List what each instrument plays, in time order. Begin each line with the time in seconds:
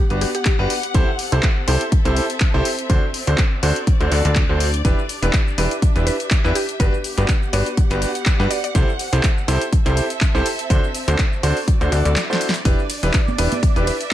Already playing: string section B3 G4 F#5, synth pluck G4
0.10 analog synth bass G1, grand piano D4 F#4 G4 B4, closed hi-hat
0.21 synth pluck G4, open hi-hat
0.35 synth pluck G4, closed hi-hat
0.45 synth pluck G4, kick, clap, closed hi-hat
0.59 analog synth bass G1, grand piano D4 F#4 G4 B4
0.70 open hi-hat
0.83 closed hi-hat
0.94 analog synth bass C2, string section C4, grand piano E4 G4 A4 C5, kick, closed hi-hat
1.16 string section A4, open hi-hat
1.32 analog synth bass C2, grand piano E4 G4 A4 C5, closed hi-hat
1.43 kick, clap, closed hi-hat
1.68 analog synth bass C2, grand piano E4 G4 A4 C5, open hi-hat
1.81 string section E5, closed hi-hat
1.92 kick, closed hi-hat
2.05 analog synth bass C2, grand piano E4 G4 A4 C5, closed hi-hat
2.16 open hi-hat
2.30 closed hi-hat
2.40 kick, clap, closed hi-hat
2.54 analog synth bass C2, grand piano E4 G4 A4 C5
2.65 open hi-hat
2.79 closed hi-hat
2.90 analog synth bass D2, grand piano D4 F#4 A4 C5, kick, closed hi-hat
3.12 string section F#4, open hi-hat
3.19 string section D5
3.27 analog synth bass D2, grand piano D4 F#4 A4 C5, closed hi-hat
3.38 kick, clap, closed hi-hat
3.63 analog synth bass D2, grand piano D4 F#4 A4 C5, open hi-hat
3.76 closed hi-hat
3.87 kick, closed hi-hat
4.01 analog synth bass D2, grand piano D4 F#4 A4 C5, closed hi-hat
4.12 analog synth bass D2, grand piano D4 F#4 A4 D5, open hi-hat
4.25 analog synth bass D2, grand piano D4 F#4 A4 D5, closed hi-hat
4.36 kick, clap, closed hi-hat
4.49 analog synth bass D2, grand piano D4 F#4 A4 C5
4.60 open hi-hat
4.74 closed hi-hat
4.85 analog synth bass E1, string section D4, grand piano D4 E4 G4 B4, kick, closed hi-hat, shaker
4.99 shaker
5.09 string section G4, open hi-hat, shaker
5.22 analog synth bass E1, grand piano D4 E4 G4 B4, closed hi-hat, shaker
5.33 kick, clap, closed hi-hat, shaker
5.48 shaker
5.58 analog synth bass E1, grand piano D4 E4 G4 B4, open hi-hat, shaker
5.71 string section E5, closed hi-hat, shaker
5.82 kick, closed hi-hat, shaker
5.96 analog synth bass E1, grand piano D4 E4 G4 B4, closed hi-hat, shaker
6.07 synth pluck B4, open hi-hat, shaker
6.20 closed hi-hat, shaker
6.31 kick, clap, closed hi-hat, shaker
6.44 analog synth bass E2, grand piano D4 E4 G4 B4, shaker
6.55 synth pluck G4, open hi-hat, shaker
6.69 closed hi-hat, shaker
6.80 analog synth bass G1, string section B3, grand piano D4 F#4 G4 B4, synth pluck B4, kick, closed hi-hat, shaker
6.94 shaker
7.04 open hi-hat, shaker
7.13 string section F#5
7.18 analog synth bass G1, grand piano D4 F#4 G4 B4, closed hi-hat, shaker
7.28 kick, clap, closed hi-hat, shaker
7.43 shaker
7.53 analog synth bass G1, grand piano D4 F#4 G4 B4, synth pluck D5, open hi-hat, shaker
7.66 closed hi-hat, shaker
7.77 kick, closed hi-hat, shaker
7.91 analog synth bass G1, grand piano D4 F#4 G4 B4, closed hi-hat, shaker
8.02 open hi-hat, shaker
8.15 closed hi-hat, shaker
8.26 kick, clap, closed hi-hat, shaker
8.39 analog synth bass G2, grand piano D4 F#4 G4 B4, shaker
8.51 synth pluck D5, open hi-hat, shaker
8.64 synth pluck D5, closed hi-hat, shaker
8.75 analog synth bass C2, string section C4, grand piano E4 G4 A4 C5, kick, closed hi-hat, shaker
8.89 shaker
8.99 open hi-hat, shaker
9.13 analog synth bass C2, grand piano E4 G4 A4 C5, string section A4, closed hi-hat, shaker
9.23 kick, clap, closed hi-hat, shaker
9.38 shaker
9.48 analog synth bass C2, grand piano E4 G4 A4 C5, open hi-hat, shaker
9.57 string section E5
9.61 closed hi-hat, shaker
9.73 kick, closed hi-hat, shaker
9.86 analog synth bass C2, grand piano E4 G4 A4 C5, closed hi-hat, shaker
9.97 open hi-hat, shaker
10.10 closed hi-hat, shaker
10.21 kick, clap, closed hi-hat, shaker
10.35 analog synth bass C2, grand piano E4 G4 A4 C5, shaker
10.46 open hi-hat, shaker
10.59 closed hi-hat, shaker
10.70 analog synth bass D2, grand piano D4 F#4 A4 C5, kick, closed hi-hat, shaker
10.84 shaker
10.95 open hi-hat, shaker
11.08 analog synth bass D2, grand piano D4 F#4 A4 C5, string section F#4, closed hi-hat, shaker
11.18 kick, clap, closed hi-hat, shaker
11.33 shaker
11.43 analog synth bass D2, grand piano D4 F#4 A4 C5, string section D5, open hi-hat, shaker
11.57 open hi-hat, shaker
11.68 kick, closed hi-hat, swell, shaker
11.81 analog synth bass D2, grand piano D4 F#4 A4 C5, closed hi-hat, shaker
11.92 analog synth bass D2, grand piano D4 F#4 A4 D5, open hi-hat, shaker
12.05 analog synth bass D2, grand piano D4 F#4 A4 D5, closed hi-hat, shaker
12.16 snare, clap, closed hi-hat, shaker
12.30 grand piano D4 F#4 A4 C5, snare, shaker
12.41 open hi-hat, shaker
12.49 snare
12.54 closed hi-hat, shaker
12.65 analog synth bass E1, string section D4, grand piano D4 E4 G4 B4, analog synth pad D5, kick, closed hi-hat, ride, tambourine, shaker
12.79 shaker
12.89 open hi-hat, ride, tambourine, shaker
13.03 analog synth bass E1, grand piano D4 E4 G4 B4, closed hi-hat, tambourine, shaker
13.13 string section G4, kick, clap, closed hi-hat, ride, tambourine, shaker
13.28 high conga, shaker
13.38 analog synth bass E1, grand piano D4 E4 G4 B4, string section E5, open hi-hat, ride, tambourine, shaker
13.51 closed hi-hat, tambourine, high conga, shaker
13.63 kick, closed hi-hat, ride, tambourine, shaker
13.76 analog synth bass E1, grand piano D4 E4 G4 B4, closed hi-hat, shaker
13.87 synth pluck B4, open hi-hat, ride, tambourine, shaker
14.01 closed hi-hat, tambourine, shaker